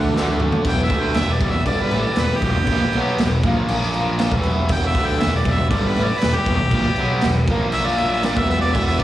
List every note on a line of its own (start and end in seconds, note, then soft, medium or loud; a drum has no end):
0.00 0.13 D3 medium
0.00 0.15 A3 medium
0.00 0.14 D4 loud
0.00 0.64 F#4 medium
0.00 0.64 A4 medium
0.00 0.65 D5 medium
0.00 0.13 F#5 loud
0.14 0.50 D2 medium
0.14 0.64 D3 medium
0.14 0.65 A3 medium
0.14 snare medium
0.19 0.67 D4 medium
0.19 0.41 F#5 medium
0.27 high tom medium
0.40 0.65 A5 medium
0.40 mid tom medium
0.52 floor tom medium
0.65 0.89 E1 medium
0.65 0.90 E2 medium
0.65 0.90 B2 medium
0.65 0.91 E3 loud
0.65 3.40 G4 medium
0.65 3.41 B4 medium
0.65 3.41 E5 medium
0.65 kick loud
0.65 crash medium
0.69 0.83 G5 loud
0.84 1.03 E5 medium
0.90 1.14 D2 medium
0.90 1.15 D3 medium
0.90 1.16 A3 medium
0.90 1.17 D4 medium
0.90 kick loud
0.90 crash medium
1.01 1.18 G5 medium
1.14 1.39 E1 medium
1.14 1.37 E2 medium
1.14 1.37 B2 medium
1.14 1.34 E5 medium
1.14 snare loud
1.14 crash medium
1.33 1.53 D5 medium
1.41 1.52 E1 medium
1.41 1.53 E2 loud
1.41 1.54 B2 loud
1.41 kick loud
1.41 crash medium
1.51 1.65 E1 medium
1.51 1.66 E2 medium
1.51 1.68 B2 medium
1.51 1.65 E5 medium
1.66 1.90 G1 medium
1.66 1.91 G2 medium
1.66 1.92 D3 loud
1.66 1.92 G3 loud
1.66 1.84 D5 medium
1.66 kick medium
1.66 crash medium
1.82 2.03 B4 medium
1.91 2.03 A1 medium
1.91 2.04 A2 medium
1.91 2.05 E3 loud
1.91 crash medium
2.02 2.21 D5 medium
2.02 muted picked electric bass stroke soft
2.06 muted distorted electric guitar stroke medium
2.16 2.29 E1 medium
2.16 2.31 E2 medium
2.16 2.31 B2 medium
2.16 snare loud
2.16 crash medium
2.20 2.38 B4 medium
2.30 muted picked electric bass stroke soft
2.30 muted distorted electric guitar stroke medium
2.37 3.34 G4 medium
2.42 2.54 E1 medium
2.42 2.55 E2 loud
2.42 2.56 B2 loud
2.42 kick loud
2.42 crash medium
2.57 2.67 E1 medium
2.57 2.69 E2 medium
2.57 2.69 B2 medium
2.67 2.79 A#1 medium
2.67 2.81 A#2 loud
2.67 kick loud
2.67 crash medium
2.72 2.82 F3 loud
2.81 muted picked electric bass stroke soft
2.81 muted distorted electric guitar stroke medium
2.93 3.17 B1 loud
2.93 3.19 B2 loud
2.93 3.19 F#3 loud
2.93 crash medium
2.98 3.20 B3 loud
3.18 3.42 E1 medium
3.18 3.40 E2 medium
3.18 3.40 B2 medium
3.18 snare loud
3.18 crash medium
3.43 4.28 A#1 medium
3.43 4.32 A#2 loud
3.43 4.33 F3 medium
3.43 4.32 F4 medium
3.43 4.32 A#4 medium
3.43 3.68 F5 loud
3.43 kick loud
3.43 crash medium
3.47 4.33 A#3 loud
3.68 3.94 E5 medium
3.68 crash medium
3.82 snare soft
3.94 crash medium
3.98 4.20 F5 medium
4.19 4.43 A5 medium
4.19 snare loud
4.19 crash medium
4.31 4.67 E1 medium
4.31 4.69 E2 medium
4.31 4.71 B2 loud
4.31 7.44 G4 medium
4.31 7.44 B4 medium
4.31 7.45 E5 medium
4.31 kick loud
4.35 4.71 E3 loud
4.43 4.68 B5 medium
4.43 crash medium
4.69 4.93 E1 medium
4.69 4.95 E2 loud
4.69 4.96 B2 loud
4.69 4.96 E3 loud
4.69 4.89 G5 loud
4.69 kick loud
4.69 crash medium
4.87 5.08 E5 loud
4.95 5.19 D2 medium
4.95 5.21 D3 medium
4.95 5.21 A3 medium
4.95 5.21 D4 loud
4.95 kick loud
4.95 crash medium
5.06 5.22 G5 medium
5.20 5.44 E1 medium
5.20 5.41 E2 medium
5.20 5.41 B2 medium
5.20 5.36 E5 medium
5.20 snare loud
5.20 crash medium
5.36 5.56 D5 medium
5.45 5.58 E1 medium
5.45 5.58 E2 medium
5.45 5.59 B2 loud
5.45 kick loud
5.45 crash medium
5.54 5.70 E5 loud
5.59 5.71 E1 medium
5.59 5.70 E2 medium
5.59 5.71 B2 medium
5.70 5.95 G1 loud
5.70 5.96 G2 medium
5.70 5.96 D3 medium
5.70 5.97 G3 medium
5.70 5.89 D5 medium
5.70 kick loud
5.70 crash medium
5.88 6.05 B4 medium
5.96 6.09 A1 medium
5.96 6.08 A2 loud
5.96 6.09 E3 loud
5.96 crash medium
6.04 6.20 D5 loud
6.09 muted distorted electric guitar stroke medium
6.09 muted picked electric bass stroke soft
6.18 6.37 B4 loud
6.18 crash medium
6.23 6.34 E1 medium
6.23 6.35 E2 medium
6.23 6.35 B2 medium
6.23 snare loud
6.35 7.35 G4 loud
6.35 muted picked electric bass stroke soft
6.35 muted distorted electric guitar stroke medium
6.46 6.58 E1 medium
6.46 6.59 E2 medium
6.46 6.59 B2 loud
6.46 kick loud
6.46 crash medium
6.61 6.71 E1 medium
6.61 6.73 E2 medium
6.61 6.73 B2 medium
6.71 6.84 A#1 medium
6.71 6.85 A#2 medium
6.71 6.85 F3 loud
6.71 kick loud
6.71 crash medium
6.86 muted distorted electric guitar stroke medium
6.86 muted picked electric bass stroke soft
6.96 7.21 B1 medium
6.96 7.23 B2 loud
6.96 7.23 F#3 loud
6.96 crash medium
7.01 7.24 B3 loud
7.21 7.47 E1 medium
7.21 7.44 E2 medium
7.21 7.44 B2 medium
7.21 snare loud
7.21 crash medium
7.46 8.33 A#1 medium
7.46 8.37 A#2 loud
7.46 8.36 F4 medium
7.46 8.37 A#4 medium
7.46 8.38 F5 medium
7.46 kick loud
7.46 crash medium
7.51 8.37 F3 loud
7.51 8.38 A#3 loud
7.72 7.89 E5 loud
7.72 crash medium
7.87 8.00 D5 medium
7.87 snare soft
7.98 8.11 E5 medium
7.98 crash medium
8.13 8.26 E5 medium
8.23 8.40 D5 loud
8.23 snare loud
8.23 crash medium
8.37 8.72 E1 loud
8.37 8.75 E2 loud
8.37 8.75 B2 medium
8.37 8.76 E3 medium
8.37 9.04 G4 medium
8.37 9.04 B4 medium
8.37 8.49 E5 medium
8.37 9.04 E5 medium
8.37 kick loud
8.50 8.61 E5 medium
8.50 crash medium
8.61 8.76 D5 loud
8.74 8.99 E1 loud
8.74 9.00 E2 loud
8.74 9.00 B2 loud
8.74 9.01 E3 loud
8.74 8.86 E5 medium
8.74 kick loud
8.74 crash medium
8.86 9.02 E5 medium
8.99 9.04 D2 medium
8.99 9.04 D5 loud
8.99 kick loud
8.99 crash medium